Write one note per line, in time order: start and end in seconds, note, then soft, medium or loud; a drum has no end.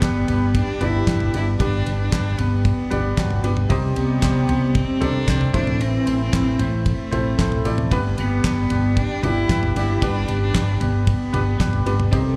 0.00 0.23 G1 medium
0.00 0.24 G2 medium
0.00 0.30 G3 medium
0.00 2.88 G3 medium
0.00 0.28 G3 medium
0.00 0.30 B3 medium
0.00 0.58 B3 loud
0.00 0.30 D4 medium
0.00 0.29 D4 medium
0.00 0.30 G4 medium
0.00 2.88 G4 loud
0.00 0.28 G4 medium
0.00 0.30 B4 medium
0.00 kick loud
0.00 snare loud
0.00 clap loud
0.00 ride medium
0.04 0.27 B4 medium
0.28 0.61 G1 medium
0.28 0.82 D4 medium
0.28 0.82 G4 medium
0.28 0.79 B4 medium
0.28 floor tom medium
0.28 ride medium
0.55 0.84 D4 loud
0.55 kick loud
0.55 ride medium
0.80 1.02 G1 loud
0.80 1.21 G3 medium
0.80 1.22 B3 medium
0.80 1.22 D4 medium
0.80 1.07 D4 soft
0.80 1.35 E4 loud
0.80 1.22 G4 medium
0.80 1.08 G4 soft
0.80 1.07 B4 medium
0.80 1.22 D5 medium
0.80 floor tom medium
0.80 ride medium
1.06 1.29 G1 loud
1.06 1.59 G3 medium
1.06 1.59 D4 medium
1.06 1.60 G4 medium
1.06 1.60 B4 medium
1.06 kick loud
1.06 snare loud
1.06 clap medium
1.06 ride medium
1.20 floor tom medium
1.34 1.55 G1 medium
1.34 1.54 G3 medium
1.34 1.54 B3 medium
1.34 1.54 D4 medium
1.34 1.47 E4 loud
1.34 1.54 G4 medium
1.34 1.54 D5 medium
1.34 ride medium
1.59 1.82 G1 loud
1.59 2.35 G2 medium
1.59 1.86 G3 medium
1.59 2.40 G3 medium
1.59 2.40 B3 medium
1.59 1.86 D4 medium
1.59 2.41 D4 medium
1.59 1.98 D4 loud
1.59 2.41 G4 medium
1.59 1.86 G4 loud
1.59 2.41 B4 medium
1.59 1.84 B4 loud
1.59 kick loud
1.59 ride medium
1.86 2.08 G1 loud
1.86 2.11 D4 medium
1.86 2.12 G4 medium
1.86 2.12 B4 medium
1.86 ride medium
2.01 2.42 D4 loud
2.11 2.34 G1 loud
2.11 2.38 G3 medium
2.11 2.39 D4 medium
2.11 2.38 G4 medium
2.11 2.36 B4 medium
2.11 kick loud
2.11 snare loud
2.11 clap loud
2.11 ride medium
2.38 2.71 G1 loud
2.38 2.66 B3 medium
2.38 2.92 D4 medium
2.38 2.92 G4 medium
2.38 2.89 B4 medium
2.38 floor tom medium
2.38 ride medium
2.65 3.42 B3 medium
2.65 kick loud
2.65 ride medium
2.90 3.13 G1 loud
2.90 3.31 G3 medium
2.90 3.31 B3 medium
2.90 3.31 D4 medium
2.90 3.17 D4 soft
2.90 3.32 G4 medium
2.90 3.18 G4 medium
2.90 3.17 B4 medium
2.90 3.32 D5 medium
2.90 floor tom medium
2.90 ride medium
3.17 3.39 G1 loud
3.17 3.43 F#3 medium
3.17 3.70 G3 medium
3.17 3.71 D4 medium
3.17 3.43 F#4 medium
3.17 3.70 G4 medium
3.17 3.71 B4 medium
3.17 kick loud
3.17 snare loud
3.17 clap medium
3.17 ride medium
3.30 floor tom medium
3.43 3.65 G1 loud
3.43 3.64 G3 medium
3.43 3.64 B3 medium
3.43 3.64 D4 medium
3.43 3.64 G4 medium
3.43 3.64 B4 medium
3.43 ride medium
3.57 floor tom medium
3.69 3.92 C2 loud
3.69 4.45 C3 medium
3.69 3.97 C3 medium
3.69 3.97 D#3 medium
3.69 4.50 G3 medium
3.69 5.25 G3 medium
3.69 3.97 G3 loud
3.69 3.97 C4 loud
3.69 4.50 D#4 medium
3.69 4.50 G4 medium
3.69 5.25 G4 loud
3.69 3.96 G4 loud
3.69 3.94 C5 loud
3.69 4.50 D#5 loud
3.69 kick loud
3.69 ride medium
3.96 4.18 C2 loud
3.96 4.20 G3 medium
3.96 4.77 B3 loud
3.96 4.21 C4 medium
3.96 4.23 G4 medium
3.96 4.23 C5 medium
3.96 ride medium
4.21 4.44 C2 loud
4.21 4.48 G3 medium
4.21 4.49 C4 medium
4.21 4.48 G4 medium
4.21 4.46 C5 medium
4.21 kick loud
4.21 snare loud
4.21 clap loud
4.21 ride medium
4.48 4.81 C2 loud
4.48 5.03 G3 medium
4.48 5.02 C4 medium
4.48 5.01 G4 medium
4.48 5.00 C5 medium
4.48 floor tom medium
4.48 ride medium
4.75 5.04 C4 loud
4.75 kick loud
4.75 ride medium
5.00 5.23 C2 loud
5.00 5.42 D#3 medium
5.00 5.41 G3 medium
5.00 5.26 G3 medium
5.00 5.41 C4 medium
5.00 5.27 C4 medium
5.00 5.54 D4 loud
5.00 5.42 G4 medium
5.00 5.28 G4 medium
5.00 5.42 A4 medium
5.00 5.28 C5 medium
5.00 floor tom medium
5.00 ride medium
5.27 5.49 C2 loud
5.27 5.54 G3 medium
5.27 5.53 C4 medium
5.27 5.54 G4 medium
5.27 5.52 C5 medium
5.27 kick loud
5.27 snare loud
5.27 clap medium
5.27 ride medium
5.41 floor tom medium
5.53 5.97 A1 loud
5.53 6.29 A2 medium
5.53 6.08 A2 medium
5.53 7.09 E3 medium
5.53 6.08 E3 medium
5.53 6.38 A3 medium
5.53 6.07 A3 medium
5.53 6.38 C4 medium
5.53 6.07 C4 medium
5.53 5.82 D4 loud
5.53 6.38 E4 medium
5.53 6.06 E4 medium
5.53 7.10 E4 loud
5.53 6.38 A4 medium
5.53 6.05 C5 medium
5.53 6.39 C5 medium
5.53 kick loud
5.53 ride medium
5.67 floor tom medium
5.81 6.20 C4 loud
5.81 ride medium
6.06 6.28 A1 loud
6.06 6.31 A3 medium
6.06 6.32 C4 medium
6.06 6.33 E4 medium
6.06 6.33 C5 medium
6.06 ride medium
6.21 6.62 C4 loud
6.32 6.55 A1 loud
6.32 6.59 A3 medium
6.32 6.60 C4 medium
6.32 6.59 E4 medium
6.32 6.58 C5 medium
6.32 kick loud
6.32 snare loud
6.32 clap loud
6.32 ride medium
6.59 6.92 A1 loud
6.59 6.86 A3 medium
6.59 7.13 A3 medium
6.59 7.12 C4 medium
6.59 7.11 E4 medium
6.59 7.10 C5 medium
6.59 floor tom medium
6.59 ride medium
6.86 7.61 A3 medium
6.86 kick loud
6.86 ride medium
7.12 7.34 A1 loud
7.12 7.53 A3 medium
7.12 7.37 A3 soft
7.12 7.53 C4 medium
7.12 7.38 C4 medium
7.12 7.53 E4 medium
7.12 7.39 E4 soft
7.12 7.53 A4 medium
7.12 7.38 C5 medium
7.12 7.53 C5 medium
7.12 floor tom medium
7.12 ride medium
7.38 7.60 A1 loud
7.38 7.64 A3 medium
7.38 7.91 A3 medium
7.38 7.92 C4 medium
7.38 7.92 E4 medium
7.38 7.64 A4 medium
7.38 7.93 C5 medium
7.38 kick loud
7.38 snare loud
7.38 clap medium
7.38 ride medium
7.52 floor tom medium
7.65 7.86 A1 loud
7.65 7.85 A3 medium
7.65 7.85 C4 medium
7.65 7.85 E4 medium
7.65 7.85 A4 medium
7.65 7.85 D5 medium
7.65 ride medium
7.78 floor tom medium
7.90 8.13 G1 loud
7.90 8.67 G2 medium
7.90 11.82 G3 medium
7.90 8.18 G3 medium
7.90 8.72 G3 medium
7.90 8.72 B3 medium
7.90 8.72 D4 medium
7.90 8.18 D4 medium
7.90 11.81 G4 loud
7.90 8.72 G4 medium
7.90 8.18 G4 loud
7.90 8.72 B4 loud
7.90 8.16 B4 medium
7.90 kick loud
7.90 ride medium
8.17 8.39 G1 loud
8.17 8.99 B3 loud
8.17 8.44 D4 medium
8.17 8.45 G4 medium
8.17 8.44 B4 medium
8.17 ride medium
8.44 8.66 G1 loud
8.44 8.70 G3 medium
8.44 8.71 D4 medium
8.44 8.71 G4 medium
8.44 8.69 B4 medium
8.44 kick loud
8.44 snare loud
8.44 clap loud
8.44 ride medium
8.70 9.02 G1 loud
8.70 9.24 D4 medium
8.70 9.24 G4 medium
8.70 9.22 B4 medium
8.70 floor tom medium
8.70 ride medium
8.97 9.26 D4 loud
8.97 kick loud
8.97 ride medium
9.23 9.44 G1 loud
9.23 9.63 G3 medium
9.23 9.64 B3 medium
9.23 9.63 D4 medium
9.23 9.48 D4 soft
9.23 9.76 E4 loud
9.23 9.64 G4 medium
9.23 9.49 G4 medium
9.23 9.49 B4 medium
9.23 9.64 B4 medium
9.23 floor tom medium
9.23 ride medium
9.49 9.71 G1 loud
9.49 10.01 G3 medium
9.49 10.01 D4 medium
9.49 10.02 G4 medium
9.49 10.02 B4 medium
9.49 kick loud
9.49 snare loud
9.49 clap medium
9.49 ride medium
9.63 floor tom medium
9.75 9.97 G1 loud
9.75 9.96 G3 medium
9.75 9.96 B3 medium
9.75 9.96 D4 medium
9.75 10.05 E4 loud
9.75 9.96 G4 medium
9.75 9.96 D5 medium
9.75 ride medium
10.02 10.23 G1 loud
10.02 10.77 G2 medium
10.02 10.28 G3 medium
10.02 10.82 G3 medium
10.02 10.82 B3 medium
10.02 10.28 D4 medium
10.02 10.83 D4 medium
10.02 10.42 D4 loud
10.02 10.83 G4 medium
10.02 10.29 G4 loud
10.02 10.83 B4 medium
10.02 10.27 B4 loud
10.02 kick loud
10.02 ride medium
10.28 10.50 G1 loud
10.28 10.54 D4 medium
10.28 10.55 G4 medium
10.28 10.54 B4 medium
10.28 ride medium
10.43 10.84 D4 loud
10.54 10.76 G1 loud
10.54 10.81 G3 medium
10.54 10.81 D4 medium
10.54 10.81 G4 medium
10.54 10.79 B4 medium
10.54 kick loud
10.54 snare loud
10.54 clap loud
10.54 ride medium
10.80 11.13 G1 loud
10.80 11.08 B3 medium
10.80 11.35 D4 medium
10.80 11.34 G4 medium
10.80 11.32 B4 medium
10.80 floor tom medium
10.80 ride medium
11.07 11.83 B3 loud
11.07 kick loud
11.07 ride medium
11.33 11.55 G1 loud
11.33 11.73 G3 medium
11.33 11.73 B3 medium
11.33 11.74 D4 medium
11.33 11.59 D4 medium
11.33 11.74 G4 medium
11.33 11.60 G4 medium
11.33 11.59 B4 medium
11.33 11.74 B4 medium
11.33 floor tom medium
11.33 ride medium
11.58 11.81 G1 loud
11.58 12.12 G3 medium
11.58 12.12 D4 medium
11.58 12.13 G4 medium
11.58 12.13 B4 medium
11.58 kick loud
11.58 snare loud
11.58 clap medium
11.58 ride medium
11.73 floor tom medium
11.86 12.07 G1 loud
11.86 12.06 G3 medium
11.86 12.06 B3 medium
11.86 12.06 D4 medium
11.86 12.06 G4 medium
11.86 12.06 B4 medium
11.86 ride medium
12.00 floor tom medium
12.11 12.34 C2 loud
12.11 12.36 C3 loud
12.11 12.36 C3 medium
12.11 12.36 D#3 medium
12.11 12.36 G3 medium
12.11 12.36 A3 medium
12.11 12.36 C4 medium
12.11 12.36 C4 loud
12.11 12.36 D#4 medium
12.11 12.36 G4 medium
12.11 12.36 G4 loud
12.11 12.36 A4 loud
12.11 12.36 C5 medium
12.11 12.36 C5 loud
12.11 kick loud
12.11 ride medium